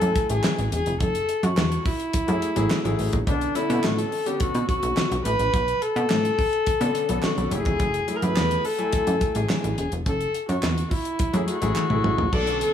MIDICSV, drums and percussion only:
0, 0, Header, 1, 2, 480
1, 0, Start_track
1, 0, Tempo, 566038
1, 854, Time_signature, 4, 2, 24, 8
1, 10799, End_track
2, 0, Start_track
2, 0, Title_t, "Drums"
2, 13, Note_on_c, 9, 42, 60
2, 97, Note_off_c, 9, 42, 0
2, 131, Note_on_c, 9, 42, 69
2, 132, Note_on_c, 9, 36, 90
2, 216, Note_off_c, 9, 42, 0
2, 217, Note_off_c, 9, 36, 0
2, 250, Note_on_c, 9, 42, 61
2, 335, Note_off_c, 9, 42, 0
2, 371, Note_on_c, 9, 39, 83
2, 375, Note_on_c, 9, 38, 112
2, 381, Note_off_c, 9, 39, 0
2, 381, Note_on_c, 9, 39, 92
2, 460, Note_off_c, 9, 38, 0
2, 466, Note_off_c, 9, 39, 0
2, 496, Note_on_c, 9, 42, 52
2, 581, Note_off_c, 9, 42, 0
2, 612, Note_on_c, 9, 42, 69
2, 697, Note_off_c, 9, 42, 0
2, 730, Note_on_c, 9, 42, 47
2, 814, Note_off_c, 9, 42, 0
2, 852, Note_on_c, 9, 42, 75
2, 853, Note_on_c, 9, 36, 113
2, 937, Note_off_c, 9, 42, 0
2, 938, Note_off_c, 9, 36, 0
2, 974, Note_on_c, 9, 42, 53
2, 1059, Note_off_c, 9, 42, 0
2, 1092, Note_on_c, 9, 42, 65
2, 1176, Note_off_c, 9, 42, 0
2, 1214, Note_on_c, 9, 42, 50
2, 1299, Note_off_c, 9, 42, 0
2, 1333, Note_on_c, 9, 39, 97
2, 1336, Note_on_c, 9, 38, 99
2, 1342, Note_off_c, 9, 39, 0
2, 1342, Note_on_c, 9, 39, 91
2, 1421, Note_off_c, 9, 38, 0
2, 1427, Note_off_c, 9, 39, 0
2, 1457, Note_on_c, 9, 42, 49
2, 1541, Note_off_c, 9, 42, 0
2, 1573, Note_on_c, 9, 46, 61
2, 1574, Note_on_c, 9, 36, 95
2, 1658, Note_off_c, 9, 46, 0
2, 1659, Note_off_c, 9, 36, 0
2, 1693, Note_on_c, 9, 42, 45
2, 1778, Note_off_c, 9, 42, 0
2, 1810, Note_on_c, 9, 42, 105
2, 1815, Note_on_c, 9, 36, 103
2, 1895, Note_off_c, 9, 42, 0
2, 1900, Note_off_c, 9, 36, 0
2, 1933, Note_on_c, 9, 42, 55
2, 2018, Note_off_c, 9, 42, 0
2, 2054, Note_on_c, 9, 42, 71
2, 2138, Note_off_c, 9, 42, 0
2, 2171, Note_on_c, 9, 42, 62
2, 2256, Note_off_c, 9, 42, 0
2, 2292, Note_on_c, 9, 39, 91
2, 2297, Note_on_c, 9, 38, 108
2, 2302, Note_off_c, 9, 39, 0
2, 2302, Note_on_c, 9, 39, 93
2, 2381, Note_off_c, 9, 38, 0
2, 2387, Note_off_c, 9, 39, 0
2, 2418, Note_on_c, 9, 42, 54
2, 2503, Note_off_c, 9, 42, 0
2, 2534, Note_on_c, 9, 46, 66
2, 2619, Note_off_c, 9, 46, 0
2, 2651, Note_on_c, 9, 42, 43
2, 2656, Note_on_c, 9, 36, 86
2, 2736, Note_off_c, 9, 42, 0
2, 2741, Note_off_c, 9, 36, 0
2, 2774, Note_on_c, 9, 36, 108
2, 2774, Note_on_c, 9, 42, 83
2, 2859, Note_off_c, 9, 36, 0
2, 2859, Note_off_c, 9, 42, 0
2, 2894, Note_on_c, 9, 42, 49
2, 2979, Note_off_c, 9, 42, 0
2, 3013, Note_on_c, 9, 42, 63
2, 3098, Note_off_c, 9, 42, 0
2, 3137, Note_on_c, 9, 42, 50
2, 3222, Note_off_c, 9, 42, 0
2, 3253, Note_on_c, 9, 39, 97
2, 3261, Note_on_c, 9, 38, 113
2, 3266, Note_off_c, 9, 39, 0
2, 3266, Note_on_c, 9, 39, 84
2, 3345, Note_off_c, 9, 38, 0
2, 3351, Note_off_c, 9, 39, 0
2, 3379, Note_on_c, 9, 42, 57
2, 3464, Note_off_c, 9, 42, 0
2, 3496, Note_on_c, 9, 46, 59
2, 3581, Note_off_c, 9, 46, 0
2, 3615, Note_on_c, 9, 42, 48
2, 3700, Note_off_c, 9, 42, 0
2, 3730, Note_on_c, 9, 42, 93
2, 3736, Note_on_c, 9, 36, 116
2, 3815, Note_off_c, 9, 42, 0
2, 3821, Note_off_c, 9, 36, 0
2, 3855, Note_on_c, 9, 42, 59
2, 3940, Note_off_c, 9, 42, 0
2, 3975, Note_on_c, 9, 36, 90
2, 3976, Note_on_c, 9, 42, 71
2, 4059, Note_off_c, 9, 36, 0
2, 4060, Note_off_c, 9, 42, 0
2, 4093, Note_on_c, 9, 42, 61
2, 4178, Note_off_c, 9, 42, 0
2, 4214, Note_on_c, 9, 39, 90
2, 4218, Note_on_c, 9, 38, 103
2, 4223, Note_off_c, 9, 39, 0
2, 4223, Note_on_c, 9, 39, 98
2, 4303, Note_off_c, 9, 38, 0
2, 4308, Note_off_c, 9, 39, 0
2, 4338, Note_on_c, 9, 42, 52
2, 4423, Note_off_c, 9, 42, 0
2, 4454, Note_on_c, 9, 42, 68
2, 4539, Note_off_c, 9, 42, 0
2, 4574, Note_on_c, 9, 42, 44
2, 4658, Note_off_c, 9, 42, 0
2, 4695, Note_on_c, 9, 36, 118
2, 4695, Note_on_c, 9, 42, 83
2, 4779, Note_off_c, 9, 42, 0
2, 4780, Note_off_c, 9, 36, 0
2, 4817, Note_on_c, 9, 42, 51
2, 4901, Note_off_c, 9, 42, 0
2, 4935, Note_on_c, 9, 42, 70
2, 5020, Note_off_c, 9, 42, 0
2, 5057, Note_on_c, 9, 42, 46
2, 5141, Note_off_c, 9, 42, 0
2, 5171, Note_on_c, 9, 39, 99
2, 5179, Note_on_c, 9, 38, 108
2, 5184, Note_off_c, 9, 39, 0
2, 5184, Note_on_c, 9, 39, 90
2, 5263, Note_off_c, 9, 38, 0
2, 5269, Note_off_c, 9, 39, 0
2, 5300, Note_on_c, 9, 42, 51
2, 5384, Note_off_c, 9, 42, 0
2, 5415, Note_on_c, 9, 46, 57
2, 5416, Note_on_c, 9, 36, 95
2, 5500, Note_off_c, 9, 46, 0
2, 5501, Note_off_c, 9, 36, 0
2, 5536, Note_on_c, 9, 42, 49
2, 5621, Note_off_c, 9, 42, 0
2, 5652, Note_on_c, 9, 42, 92
2, 5656, Note_on_c, 9, 36, 98
2, 5737, Note_off_c, 9, 42, 0
2, 5741, Note_off_c, 9, 36, 0
2, 5773, Note_on_c, 9, 42, 59
2, 5858, Note_off_c, 9, 42, 0
2, 5892, Note_on_c, 9, 42, 76
2, 5977, Note_off_c, 9, 42, 0
2, 6011, Note_on_c, 9, 42, 64
2, 6096, Note_off_c, 9, 42, 0
2, 6128, Note_on_c, 9, 39, 85
2, 6137, Note_on_c, 9, 38, 113
2, 6142, Note_off_c, 9, 39, 0
2, 6142, Note_on_c, 9, 39, 90
2, 6221, Note_off_c, 9, 38, 0
2, 6227, Note_off_c, 9, 39, 0
2, 6256, Note_on_c, 9, 42, 54
2, 6341, Note_off_c, 9, 42, 0
2, 6372, Note_on_c, 9, 42, 70
2, 6457, Note_off_c, 9, 42, 0
2, 6489, Note_on_c, 9, 42, 44
2, 6496, Note_on_c, 9, 36, 90
2, 6574, Note_off_c, 9, 42, 0
2, 6580, Note_off_c, 9, 36, 0
2, 6611, Note_on_c, 9, 42, 82
2, 6613, Note_on_c, 9, 36, 105
2, 6696, Note_off_c, 9, 42, 0
2, 6698, Note_off_c, 9, 36, 0
2, 6733, Note_on_c, 9, 42, 50
2, 6818, Note_off_c, 9, 42, 0
2, 6851, Note_on_c, 9, 42, 64
2, 6936, Note_off_c, 9, 42, 0
2, 6973, Note_on_c, 9, 42, 50
2, 7058, Note_off_c, 9, 42, 0
2, 7093, Note_on_c, 9, 39, 97
2, 7098, Note_on_c, 9, 38, 100
2, 7103, Note_off_c, 9, 39, 0
2, 7103, Note_on_c, 9, 39, 86
2, 7182, Note_off_c, 9, 38, 0
2, 7188, Note_off_c, 9, 39, 0
2, 7216, Note_on_c, 9, 42, 49
2, 7301, Note_off_c, 9, 42, 0
2, 7332, Note_on_c, 9, 46, 59
2, 7417, Note_off_c, 9, 46, 0
2, 7451, Note_on_c, 9, 42, 45
2, 7535, Note_off_c, 9, 42, 0
2, 7568, Note_on_c, 9, 42, 102
2, 7574, Note_on_c, 9, 36, 98
2, 7653, Note_off_c, 9, 42, 0
2, 7659, Note_off_c, 9, 36, 0
2, 7691, Note_on_c, 9, 42, 58
2, 7776, Note_off_c, 9, 42, 0
2, 7810, Note_on_c, 9, 42, 69
2, 7812, Note_on_c, 9, 36, 85
2, 7895, Note_off_c, 9, 42, 0
2, 7897, Note_off_c, 9, 36, 0
2, 7928, Note_on_c, 9, 42, 60
2, 8013, Note_off_c, 9, 42, 0
2, 8051, Note_on_c, 9, 39, 92
2, 8055, Note_on_c, 9, 38, 114
2, 8061, Note_off_c, 9, 39, 0
2, 8061, Note_on_c, 9, 39, 87
2, 8140, Note_off_c, 9, 38, 0
2, 8146, Note_off_c, 9, 39, 0
2, 8176, Note_on_c, 9, 42, 55
2, 8261, Note_off_c, 9, 42, 0
2, 8293, Note_on_c, 9, 42, 73
2, 8377, Note_off_c, 9, 42, 0
2, 8411, Note_on_c, 9, 42, 44
2, 8496, Note_off_c, 9, 42, 0
2, 8532, Note_on_c, 9, 42, 85
2, 8533, Note_on_c, 9, 36, 111
2, 8617, Note_off_c, 9, 42, 0
2, 8618, Note_off_c, 9, 36, 0
2, 8654, Note_on_c, 9, 42, 49
2, 8739, Note_off_c, 9, 42, 0
2, 8772, Note_on_c, 9, 42, 70
2, 8857, Note_off_c, 9, 42, 0
2, 8895, Note_on_c, 9, 42, 47
2, 8980, Note_off_c, 9, 42, 0
2, 9012, Note_on_c, 9, 39, 98
2, 9018, Note_on_c, 9, 38, 108
2, 9023, Note_off_c, 9, 39, 0
2, 9023, Note_on_c, 9, 39, 87
2, 9103, Note_off_c, 9, 38, 0
2, 9108, Note_off_c, 9, 39, 0
2, 9138, Note_on_c, 9, 42, 54
2, 9223, Note_off_c, 9, 42, 0
2, 9253, Note_on_c, 9, 46, 59
2, 9254, Note_on_c, 9, 36, 92
2, 9338, Note_off_c, 9, 46, 0
2, 9339, Note_off_c, 9, 36, 0
2, 9372, Note_on_c, 9, 42, 49
2, 9457, Note_off_c, 9, 42, 0
2, 9490, Note_on_c, 9, 42, 103
2, 9495, Note_on_c, 9, 36, 109
2, 9575, Note_off_c, 9, 42, 0
2, 9580, Note_off_c, 9, 36, 0
2, 9612, Note_on_c, 9, 42, 59
2, 9697, Note_off_c, 9, 42, 0
2, 9733, Note_on_c, 9, 42, 70
2, 9818, Note_off_c, 9, 42, 0
2, 9851, Note_on_c, 9, 42, 60
2, 9936, Note_off_c, 9, 42, 0
2, 9970, Note_on_c, 9, 39, 86
2, 9973, Note_on_c, 9, 48, 57
2, 10055, Note_off_c, 9, 39, 0
2, 10058, Note_off_c, 9, 48, 0
2, 10092, Note_on_c, 9, 47, 66
2, 10177, Note_off_c, 9, 47, 0
2, 10212, Note_on_c, 9, 45, 85
2, 10297, Note_off_c, 9, 45, 0
2, 10332, Note_on_c, 9, 43, 83
2, 10417, Note_off_c, 9, 43, 0
2, 10453, Note_on_c, 9, 49, 91
2, 10454, Note_on_c, 9, 36, 120
2, 10538, Note_off_c, 9, 36, 0
2, 10538, Note_off_c, 9, 49, 0
2, 10574, Note_on_c, 9, 42, 52
2, 10659, Note_off_c, 9, 42, 0
2, 10695, Note_on_c, 9, 42, 78
2, 10780, Note_off_c, 9, 42, 0
2, 10799, End_track
0, 0, End_of_file